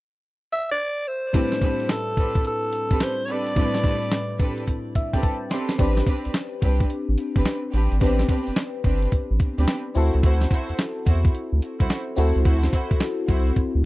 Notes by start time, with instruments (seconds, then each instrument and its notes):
0.52 alto saxophone E5
0.71 alto saxophone D5
1.08 alto saxophone C5
1.33 fm electric piano A2 G3 C4 D4 E4 B4, string section C4 D4 G4 A4 B4, kick, closed hi-hat
1.52 snare
1.62 string section C4 D4 G4 A4 B4, kick, closed hi-hat
1.80 closed hi-hat
1.89 alto saxophone A4, snare, clap, closed hi-hat
2.17 string section C4 D4 G4 A4 B4, kick, closed hi-hat
2.35 kick, closed hi-hat
2.45 alto saxophone A4, closed hi-hat
2.73 closed hi-hat
2.91 string section C4 D4 G4 A4 B4, kick, closed hi-hat
3.00 alto saxophone C5, snare, clap, closed hi-hat
3.25 string section C4 D4 G4 A4, alto saxophone C#5, closed hi-hat
3.29 string section B4, alto saxophone D5
3.46 closed hi-hat
3.55 fm electric piano A2 G3 C4 D4 E4 B4, string section C4 D4 G4 A4 B4, kick, closed hi-hat
3.74 snare
3.84 string section C4 D4 G4 A4 B4, kick, closed hi-hat
4.02 closed hi-hat
4.12 snare, clap, closed hi-hat
4.39 string section C4 D4 G4 A4 B4, kick, closed hi-hat
4.58 closed hi-hat
4.67 kick, closed hi-hat
4.95 fm electric piano E5, kick, closed hi-hat
5.13 string section C4 D4 G4 A4 B4, fm electric piano G5, kick, closed hi-hat
5.23 fm electric piano A5, kick, closed hi-hat
5.50 string section C4 D4 G4 A4 B4, fm electric piano C6, snare, closed hi-hat
5.69 snare, closed hi-hat
5.78 analog synth bass A1, fm electric piano C4 D4 G4 B4, string section C4 D4 G4 B4, kick, closed hi-hat
5.97 snare
6.07 string section C4 D4 G4 B4, kick, closed hi-hat
6.25 analog synth bass C2, closed hi-hat
6.34 snare, clap, closed hi-hat
6.62 analog synth bass C2, string section C4 D4 G4 B4, kick, closed hi-hat
6.80 kick, closed hi-hat
6.90 closed hi-hat
7.09 analog synth bass A1
7.18 closed hi-hat
7.36 analog synth bass G1, string section C4 D4 G4 B4, kick, closed hi-hat
7.45 snare, clap, closed hi-hat
7.73 analog synth bass A1, string section C4 D4 G4 B4, closed hi-hat
7.92 analog synth bass G#1, closed hi-hat
8.00 analog synth bass A1, fm electric piano B3 D4 G4 B4, string section C4 D4 G4 B4, kick, closed hi-hat
8.06 fm electric piano C4
8.19 snare
8.29 string section C4 D4 G4 B4, kick, closed hi-hat
8.47 analog synth bass G1, closed hi-hat
8.56 snare, clap, closed hi-hat
8.84 analog synth bass G1, string section C4 D4 G4 B4, kick, closed hi-hat
9.02 closed hi-hat
9.12 kick, closed hi-hat
9.31 analog synth bass A1
9.40 kick, closed hi-hat
9.58 analog synth bass D2, string section C4 D4 G4 B4, closed hi-hat
9.67 snare, clap, closed hi-hat
9.95 analog synth bass D2, fm electric piano C4 E4 F#4 A4, string section E4 F#4 C5, closed hi-hat
10.14 analog synth bass C#2, closed hi-hat
10.23 analog synth bass D2, string section E4 F#4 C5, kick, closed hi-hat
10.41 snare
10.51 string section E4 F#4 C5, kick, closed hi-hat
10.69 analog synth bass E2, closed hi-hat
10.79 snare, clap, closed hi-hat
11.06 analog synth bass E2, string section E4 F#4 C5, kick, closed hi-hat
11.25 kick, closed hi-hat
11.35 closed hi-hat
11.53 analog synth bass D2
11.62 closed hi-hat
11.79 analog synth bass C2, string section E4 F#4 C5, kick, closed hi-hat
11.90 snare, clap, closed hi-hat
12.16 analog synth bass D2, fm electric piano C4 E4 F#4 A4, string section E4 F#4 C5, closed hi-hat
12.36 analog synth bass C#2, closed hi-hat
12.45 analog synth bass D2, string section E4 F#4 C5, kick, closed hi-hat
12.63 snare
12.73 string section E4 F#4 C5, kick, closed hi-hat
12.91 analog synth bass C2, kick, closed hi-hat
13.00 snare, clap, closed hi-hat
13.28 analog synth bass C2, string section E4 F#4 C5, kick, closed hi-hat
13.47 closed hi-hat
13.56 kick, closed hi-hat
13.75 analog synth bass D2